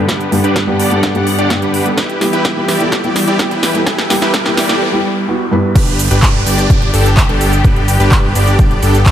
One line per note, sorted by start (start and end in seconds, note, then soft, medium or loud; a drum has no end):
0.00 0.11 G2 medium
0.00 1.94 D3 medium
0.00 0.11 G3 medium
0.00 1.94 G3 medium
0.00 0.11 B3 medium
0.00 4.77 B3 medium
0.00 0.11 D4 medium
0.00 0.11 A4 medium
0.00 riser medium
0.08 0.31 D4 medium
0.08 0.31 G4 medium
0.08 0.31 B4 medium
0.08 1.96 F#5 medium
0.08 kick loud
0.08 snare medium
0.08 closed hi-hat medium
0.21 closed hi-hat soft
0.32 0.65 G2 medium
0.32 0.65 G3 medium
0.32 0.65 B3 medium
0.32 0.65 D4 medium
0.32 0.65 G4 medium
0.32 open hi-hat loud
0.44 0.77 G1 medium
0.44 0.77 D4 medium
0.44 0.77 G4 medium
0.44 0.77 B4 loud
0.44 closed hi-hat soft
0.56 kick loud
0.56 snare medium
0.56 closed hi-hat medium
0.67 0.88 G2 medium
0.67 0.88 G3 medium
0.67 0.88 B3 medium
0.67 0.88 D4 medium
0.67 0.88 G4 medium
0.79 1.01 G1 medium
0.79 1.00 D4 medium
0.79 1.00 G4 medium
0.79 1.00 D5 medium
0.79 open hi-hat loud
0.91 1.12 G2 medium
0.91 1.12 G3 medium
0.91 1.12 B3 medium
0.91 1.12 D4 medium
0.91 1.12 A4 medium
0.91 closed hi-hat soft
1.03 1.26 D4 medium
1.03 1.26 G4 medium
1.03 1.26 D5 loud
1.03 kick loud
1.03 snare medium
1.03 closed hi-hat medium
1.14 1.47 G2 medium
1.14 1.47 G3 medium
1.14 1.48 B3 medium
1.14 1.48 D4 medium
1.14 1.48 G4 medium
1.14 closed hi-hat soft
1.27 open hi-hat loud
1.38 1.60 G1 medium
1.38 1.59 D4 medium
1.38 1.59 G4 medium
1.38 1.59 D5 loud
1.38 closed hi-hat medium
1.50 1.72 G2 medium
1.50 1.73 G3 medium
1.50 1.73 B3 medium
1.50 1.73 D4 medium
1.50 1.73 G4 medium
1.50 kick loud
1.50 snare medium
1.50 closed hi-hat medium
1.62 1.95 G1 medium
1.62 1.85 D4 medium
1.62 1.85 G4 medium
1.62 1.85 B4 medium
1.62 closed hi-hat soft
1.74 open hi-hat loud
1.85 1.96 G3 medium
1.85 1.96 B3 medium
1.85 1.96 D4 medium
1.85 1.96 A4 medium
1.85 closed hi-hat medium
1.97 4.78 E3 medium
1.97 4.78 G3 medium
1.97 2.20 E4 medium
1.97 2.20 G4 medium
1.97 4.78 G4 medium
1.97 2.20 B4 medium
1.97 kick loud
1.97 snare medium
1.97 closed hi-hat medium
2.10 closed hi-hat soft
2.21 2.54 G3 medium
2.21 2.54 B3 medium
2.21 2.54 E4 medium
2.21 2.54 G4 medium
2.21 snare medium
2.21 open hi-hat loud
2.33 2.66 E1 loud
2.33 2.66 E4 medium
2.33 2.66 G4 medium
2.33 2.66 B4 loud
2.33 closed hi-hat soft
2.45 kick loud
2.45 snare medium
2.45 closed hi-hat medium
2.56 2.76 G3 medium
2.56 2.77 B3 medium
2.56 2.77 E4 medium
2.56 2.77 G4 medium
2.68 2.90 E1 medium
2.68 2.89 E4 medium
2.68 2.89 G4 medium
2.68 2.89 D5 medium
2.68 snare medium
2.68 open hi-hat loud
2.80 3.01 G3 medium
2.80 3.01 B3 medium
2.80 3.01 E4 medium
2.80 3.01 A4 medium
2.80 closed hi-hat soft
2.92 3.15 E4 medium
2.92 3.15 G4 medium
2.92 3.15 D5 loud
2.92 kick loud
2.92 snare medium
2.92 closed hi-hat medium
3.03 3.36 G3 medium
3.03 3.36 B3 medium
3.03 3.37 E4 medium
3.03 3.37 G4 medium
3.03 closed hi-hat soft
3.16 snare medium
3.16 open hi-hat loud
3.27 3.49 E1 medium
3.27 3.48 E4 medium
3.27 3.48 G4 medium
3.27 3.48 D5 medium
3.27 closed hi-hat medium
3.39 3.62 G3 medium
3.39 3.62 B3 medium
3.39 3.62 E4 medium
3.39 3.62 G4 medium
3.39 kick loud
3.39 snare medium
3.39 closed hi-hat medium
3.51 3.74 E4 medium
3.51 3.74 G4 medium
3.51 3.74 B4 medium
3.51 closed hi-hat soft
3.63 snare medium
3.63 open hi-hat loud
3.74 3.89 G3 medium
3.74 3.89 B3 medium
3.74 3.89 E4 medium
3.74 3.89 A4 medium
3.74 closed hi-hat soft
3.86 4.09 E4 medium
3.86 4.09 G4 medium
3.86 4.09 B4 medium
3.86 kick loud
3.86 snare medium
3.86 closed hi-hat medium
3.86 noise sweep medium
3.98 snare medium
3.98 closed hi-hat soft
4.10 4.43 G3 medium
4.10 4.43 B3 medium
4.10 4.43 E4 medium
4.10 4.43 G4 loud
4.10 snare medium
4.10 open hi-hat loud
4.22 4.55 E4 medium
4.22 4.55 G4 medium
4.22 4.55 B4 loud
4.22 snare medium
4.22 closed hi-hat medium
4.34 kick loud
4.34 snare loud
4.34 closed hi-hat medium
4.45 4.65 G3 medium
4.45 4.66 B3 medium
4.45 4.66 E4 medium
4.45 4.66 G4 medium
4.45 snare medium
4.57 4.78 E4 medium
4.57 4.78 G4 medium
4.57 4.78 D5 medium
4.57 snare loud
4.57 open hi-hat loud
4.69 4.90 G3 medium
4.69 4.90 B3 medium
4.69 4.90 E4 medium
4.69 4.90 A4 medium
4.69 snare medium
4.69 closed hi-hat soft
4.92 5.25 G3 medium
4.92 5.25 B3 medium
4.92 5.26 E4 medium
4.92 5.26 G4 medium
5.28 5.42 G3 medium
5.28 5.42 B3 medium
5.28 5.42 E4 medium
5.28 5.43 F#4 medium
5.51 5.74 G2 medium
5.51 5.74 G3 medium
5.51 5.74 B3 medium
5.51 5.74 E4 medium
5.51 5.75 B4 loud
5.75 6.09 G1 loud
5.75 9.12 D3 medium
5.75 9.12 G3 medium
5.75 9.12 B3 medium
5.75 5.98 D4 medium
5.75 5.98 G4 medium
5.75 9.12 G4 medium
5.75 5.98 B4 medium
5.75 kick loud
5.75 closed hi-hat medium
5.75 ride medium
5.75 crash loud
5.75 downlifter medium
5.75 shaker soft
5.88 closed hi-hat soft
5.99 open hi-hat loud
5.99 ride medium
5.99 shaker medium
6.11 6.44 G1 medium
6.11 6.44 D4 medium
6.11 6.44 G4 medium
6.11 6.44 B4 loud
6.11 closed hi-hat medium
6.11 shaker soft
6.23 kick loud
6.23 clap loud
6.23 closed hi-hat medium
6.23 ride medium
6.23 shaker soft
6.46 6.68 G1 medium
6.46 6.67 D4 medium
6.46 6.67 G4 medium
6.46 6.67 D5 medium
6.46 open hi-hat loud
6.46 ride medium
6.46 shaker medium
6.58 closed hi-hat medium
6.58 shaker soft
6.70 6.91 G1 medium
6.70 6.91 D4 medium
6.70 6.91 G4 medium
6.70 6.91 D5 medium
6.70 kick loud
6.70 closed hi-hat medium
6.70 ride medium
6.70 shaker soft
6.82 closed hi-hat soft
6.94 7.27 G1 medium
6.94 7.08 D4 loud
6.94 7.08 G4 medium
6.94 7.08 A4 loud
6.94 open hi-hat loud
6.94 ride medium
6.94 shaker medium
7.06 closed hi-hat medium
7.06 shaker soft
7.17 kick loud
7.17 clap loud
7.17 closed hi-hat medium
7.17 ride soft
7.17 shaker soft
7.29 7.62 G1 loud
7.29 7.52 D4 medium
7.29 7.52 G4 medium
7.29 7.52 A4 loud
7.29 closed hi-hat soft
7.41 open hi-hat loud
7.41 ride medium
7.41 shaker medium
7.53 closed hi-hat medium
7.53 shaker soft
7.64 7.87 D4 medium
7.64 7.87 G4 medium
7.64 7.87 B4 medium
7.64 kick loud
7.64 closed hi-hat medium
7.64 ride medium
7.64 shaker soft
7.76 closed hi-hat soft
7.88 open hi-hat loud
7.88 ride medium
7.88 shaker medium
8.00 8.33 G1 loud
8.00 8.33 D4 loud
8.00 8.33 G4 medium
8.00 8.33 B4 loud
8.00 closed hi-hat medium
8.00 shaker soft
8.12 kick loud
8.12 clap loud
8.12 closed hi-hat medium
8.12 ride medium
8.12 shaker soft
8.35 8.57 G1 loud
8.35 8.56 D4 medium
8.35 8.56 G4 medium
8.35 8.56 D5 medium
8.35 open hi-hat loud
8.35 ride medium
8.35 shaker medium
8.47 closed hi-hat soft
8.47 shaker soft
8.59 8.80 D4 medium
8.59 8.80 G4 medium
8.59 8.80 D5 loud
8.59 kick loud
8.59 closed hi-hat medium
8.59 ride medium
8.59 shaker soft
8.71 closed hi-hat soft
8.83 9.12 G1 loud
8.83 8.97 D4 loud
8.83 8.97 G4 loud
8.83 8.97 A4 loud
8.83 open hi-hat loud
8.83 ride medium
8.83 shaker medium
8.94 closed hi-hat medium
8.94 shaker soft
9.06 kick loud
9.06 clap loud
9.06 closed hi-hat medium
9.06 ride medium
9.06 shaker soft